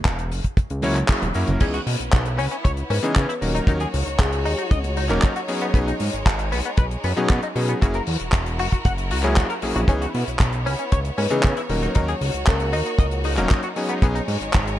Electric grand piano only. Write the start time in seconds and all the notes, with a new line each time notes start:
0.83 F#3 A#3 C#4 E4 C#5
1.09 F#3 A#3 C#4 E4 G#4
1.35 F#3 A#3 C#4 E4 A#4
1.61 E3 B3 C#4 D#4 G#4
3.03 E3 B3 C#4 D#4 G#4
3.41 F#3 A#3 C#4 D#4 A#4
3.67 F#3 A#3 C#4 D#4 A#4
5.09 F#3 A#3 C#4 D#4 A#4
5.48 F#3 B3 C#4 D#4 G#4
5.74 F#3 B3 C#4 D#4 G#4
7.16 F#3 B3 C#4 D#4 G#4
7.55 F#3 B3 C#4 D#4 G#4
7.81 F#3 A#3 C#4 E4 G#4
9.24 F#3 A#3 C#4 E4 G#4
9.62 F#3 A#3 C#4 E4 G#4
9.88 E3 B3 C#4 D#4 G#4
11.30 E3 B3 C#4 D#4 G#4
11.69 F#3 A#3 C#4 D#4 A#4
11.95 F#3 A#3 C#4 D#4 A#4
13.37 F#3 A#3 C#4 D#4 A#4
13.76 F#3 B3 C#4 D#4 G#4
14.02 F#3 B3 C#4 D#4 G#4